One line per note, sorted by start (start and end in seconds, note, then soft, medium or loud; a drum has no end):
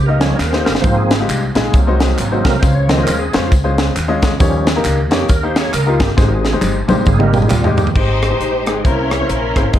0.00 0.32 C#2 medium
0.06 0.36 A#3 medium
0.06 0.36 D#4 medium
0.06 0.36 G4 medium
0.06 0.23 A#4 loud
0.06 0.37 D#5 medium
0.19 0.36 F3 soft
0.19 0.37 G3 soft
0.19 0.37 C#4 soft
0.19 0.38 C#5 medium
0.19 snare loud
0.19 closed hi-hat medium
0.19 tambourine soft
0.35 0.52 A#4 medium
0.39 0.62 D#2 medium
0.39 snare medium
0.39 clap medium
0.39 tambourine medium
0.50 0.75 A#3 medium
0.50 0.75 D#4 medium
0.50 0.75 G4 medium
0.50 0.68 C5 medium
0.50 0.75 C5 medium
0.50 snare medium
0.65 0.81 G1 medium
0.65 0.73 A#4 medium
0.65 snare medium
0.65 tambourine medium
0.75 snare medium
0.81 1.22 G#1 medium
0.81 1.52 G#2 medium
0.81 1.15 F3 medium
0.81 1.11 G#3 medium
0.81 1.15 A#3 medium
0.81 1.16 C4 medium
0.81 1.11 D#4 medium
0.81 1.11 F4 medium
0.81 0.96 C5 loud
0.81 kick loud
0.81 closed hi-hat medium
0.81 tambourine medium
0.85 1.12 C5 medium
0.97 1.20 G#4 medium
1.11 snare loud
1.11 closed hi-hat medium
1.11 tambourine medium
1.20 1.42 G#3 medium
1.20 1.42 D#4 medium
1.20 1.42 F4 medium
1.20 1.43 G4 medium
1.28 1.51 C2 medium
1.28 clap medium
1.28 closed hi-hat medium
1.28 tambourine medium
1.55 1.71 A#1 loud
1.55 1.73 G#3 medium
1.55 1.73 D#4 medium
1.55 1.73 F4 medium
1.55 1.73 G#4 medium
1.55 snare loud
1.55 closed hi-hat medium
1.55 tambourine medium
1.71 2.12 C2 loud
1.71 2.41 C3 medium
1.71 2.57 F#3 soft
1.71 2.58 A#3 medium
1.71 2.58 C4 medium
1.71 kick loud
1.71 closed hi-hat medium
1.75 tambourine medium
1.87 2.15 G#3 medium
1.87 2.15 D#4 medium
1.87 2.15 F#4 medium
1.87 2.16 C5 loud
2.00 snare loud
2.00 closed hi-hat medium
2.00 tambourine soft
2.18 2.41 G#1 medium
2.18 clap medium
2.18 closed hi-hat loud
2.18 tambourine medium
2.31 2.54 G#3 medium
2.31 2.54 D#4 medium
2.31 2.54 F#4 medium
2.31 2.54 C5 medium
2.44 2.60 C2 medium
2.44 2.61 A#4 loud
2.44 kick medium
2.44 snare loud
2.44 closed hi-hat medium
2.44 tambourine medium
2.59 3.00 C#2 loud
2.59 3.30 C#3 medium
2.59 2.89 G#3 medium
2.59 2.89 C#4 medium
2.59 2.89 F4 medium
2.59 2.75 C5 loud
2.59 2.89 C5 medium
2.59 kick loud
2.59 closed hi-hat medium
2.59 tambourine medium
2.74 2.91 C#5 loud
2.87 3.15 D#3 soft
2.87 3.16 F3 medium
2.87 3.16 C4 medium
2.87 3.06 D#5 loud
2.87 snare loud
2.87 closed hi-hat medium
2.87 tambourine medium
2.97 3.20 G#3 medium
2.97 3.20 C#4 medium
2.97 3.20 F4 medium
2.97 3.20 C5 medium
3.03 3.21 A#4 medium
3.07 3.30 D#2 medium
3.07 clap medium
3.07 closed hi-hat medium
3.07 tambourine medium
3.19 3.36 G#4 loud
3.33 3.49 F2 loud
3.33 3.51 G#3 medium
3.33 3.51 C#4 medium
3.33 3.51 F4 medium
3.33 3.52 C5 medium
3.33 snare loud
3.33 closed hi-hat medium
3.33 tambourine medium
3.47 3.55 F4 medium
3.52 3.90 C#2 medium
3.52 kick medium
3.52 closed hi-hat medium
3.52 tambourine medium
3.64 3.93 G#3 medium
3.64 3.93 C#4 medium
3.64 3.93 F4 medium
3.64 3.87 G#4 medium
3.64 3.93 C5 medium
3.78 snare loud
3.78 closed hi-hat medium
3.78 tambourine medium
3.96 4.34 D#2 loud
3.96 clap medium
3.96 closed hi-hat medium
3.96 tambourine medium
4.08 4.31 G#3 loud
4.08 4.31 C#4 medium
4.08 4.31 F4 medium
4.08 4.31 D#5 loud
4.22 kick loud
4.22 snare loud
4.22 closed hi-hat medium
4.22 tambourine medium
4.40 4.78 D#2 medium
4.40 5.08 D#3 medium
4.40 4.72 F3 medium
4.40 4.72 G3 medium
4.40 4.67 A#3 medium
4.40 4.73 C#4 medium
4.40 4.67 D#4 medium
4.40 4.67 G4 medium
4.40 4.67 C#5 loud
4.40 kick loud
4.40 closed hi-hat loud
4.40 tambourine medium
4.67 snare loud
4.67 closed hi-hat medium
4.67 tambourine medium
4.76 4.98 A#3 medium
4.76 4.98 D#4 medium
4.76 4.98 G4 medium
4.76 4.98 A#4 loud
4.85 5.11 C#2 medium
4.85 clap medium
4.85 closed hi-hat medium
4.85 tambourine loud
5.10 5.26 F2 loud
5.10 5.29 A#3 medium
5.10 5.29 D#4 medium
5.10 5.29 G4 medium
5.10 5.28 G4 medium
5.10 5.29 C#5 medium
5.10 snare loud
5.10 closed hi-hat medium
5.10 tambourine medium
5.29 5.67 D#2 medium
5.29 5.44 A#4 medium
5.29 kick medium
5.29 closed hi-hat loud
5.29 tambourine medium
5.43 5.71 A#3 medium
5.43 5.71 D#4 medium
5.43 5.71 G4 medium
5.43 5.71 A#4 medium
5.43 5.59 C5 loud
5.56 5.72 C#5 loud
5.56 snare loud
5.56 closed hi-hat medium
5.56 tambourine medium
5.73 5.97 C#2 medium
5.73 5.89 A#4 loud
5.73 clap medium
5.73 closed hi-hat loud
5.73 tambourine medium
5.86 6.09 A#3 medium
5.86 6.09 D#4 medium
5.86 6.02 F4 medium
5.86 6.09 G4 medium
5.86 6.09 A#4 medium
6.00 6.15 G1 loud
6.00 6.10 G4 loud
6.00 kick medium
6.00 snare loud
6.00 closed hi-hat medium
6.00 tambourine medium
6.17 6.56 G#1 loud
6.17 6.85 G#2 medium
6.17 6.44 G#3 medium
6.17 6.44 D#4 medium
6.17 6.44 G4 medium
6.17 6.29 G#4 loud
6.17 6.45 C5 medium
6.17 kick loud
6.17 snare medium
6.17 tambourine medium
6.29 6.55 G#4 medium
6.29 6.33 A#4 medium
6.45 snare medium
6.45 tambourine soft
6.53 6.75 G#3 medium
6.53 6.76 D#4 medium
6.53 6.76 G4 medium
6.53 6.76 C5 medium
6.62 6.85 G1 medium
6.62 clap medium
6.62 high tom medium
6.62 tambourine loud
6.87 7.04 A#1 medium
6.87 7.91 G3 medium
6.87 7.06 G#3 medium
6.87 7.91 A#3 soft
6.87 7.92 C4 medium
6.87 7.07 D#4 medium
6.87 7.07 G4 medium
6.87 7.07 C5 loud
6.87 high tom medium
6.87 tambourine medium
7.06 7.45 G#1 loud
7.06 7.22 G#4 medium
7.06 kick loud
7.06 mid tom medium
7.06 tambourine medium
7.19 7.48 G#3 medium
7.19 7.48 D#4 medium
7.19 7.48 G4 medium
7.19 7.48 D#5 medium
7.19 mid tom medium
7.23 7.38 A#4 loud
7.33 mid tom medium
7.33 tambourine soft
7.38 7.49 G#4 loud
7.42 mid tom medium
7.48 7.89 D#2 medium
7.48 7.51 E4 medium
7.48 clap medium
7.48 mid tom medium
7.48 tambourine medium
7.54 7.68 F4 medium
7.64 7.87 G#3 medium
7.64 7.87 D#4 medium
7.64 7.87 G4 medium
7.64 7.89 G4 medium
7.64 7.87 D#5 medium
7.64 floor tom medium
7.77 floor tom loud
7.77 tambourine medium
7.87 floor tom medium
7.95 8.34 G#1 medium
7.95 8.63 G#2 soft
7.95 8.22 G#3 medium
7.95 8.84 G#3 medium
7.95 8.81 D#4 medium
7.95 8.23 D#4 medium
7.95 8.81 G4 medium
7.95 8.23 G4 soft
7.95 8.63 C5 medium
7.95 8.23 C5 medium
7.95 8.84 D#5 medium
7.95 8.85 G5 medium
7.95 9.79 C6 medium
7.95 kick loud
7.95 crash medium
8.22 cross-stick medium
8.22 closed hi-hat medium
8.31 8.53 G#3 medium
8.31 8.53 D#4 medium
8.31 8.53 G4 medium
8.31 8.53 C5 medium
8.40 8.67 A#1 medium
8.40 closed hi-hat medium
8.66 8.82 G#1 medium
8.66 8.79 G#3 medium
8.66 8.79 D#4 medium
8.66 8.79 G4 medium
8.66 8.85 G#4 medium
8.66 8.79 C5 medium
8.66 cross-stick loud
8.66 closed hi-hat medium
8.84 9.23 C2 medium
8.84 9.53 C3 medium
8.84 9.12 A#3 medium
8.84 9.12 C#4 medium
8.84 9.28 C#4 medium
8.84 9.29 E4 medium
8.84 9.12 E4 medium
8.84 9.73 A#4 medium
8.84 9.10 A#4 medium
8.84 9.12 C5 medium
8.84 9.73 C#5 medium
8.84 9.73 E5 medium
8.84 kick medium
8.84 closed hi-hat medium
9.11 9.29 C#5 medium
9.11 cross-stick medium
9.11 closed hi-hat medium
9.20 9.43 A#3 medium
9.20 9.43 C#4 medium
9.20 9.43 E4 medium
9.20 9.43 C5 medium
9.29 9.53 A#1 medium
9.29 9.71 C#4 medium
9.29 9.71 E4 medium
9.29 9.74 A#4 medium
9.29 closed hi-hat medium
9.56 9.71 G#1 medium
9.56 9.68 A#3 medium
9.56 9.68 C#4 medium
9.56 9.69 E4 medium
9.56 9.69 C5 medium
9.56 kick medium
9.56 cross-stick medium
9.56 closed hi-hat medium
9.73 9.79 F1 medium
9.73 9.79 G#3 medium
9.73 9.79 C4 medium
9.73 9.79 D#4 medium
9.73 9.79 F4 soft
9.73 9.79 G#4 medium
9.73 9.79 C5 medium
9.73 9.79 D#5 medium
9.73 9.79 F5 medium
9.73 kick loud
9.73 closed hi-hat medium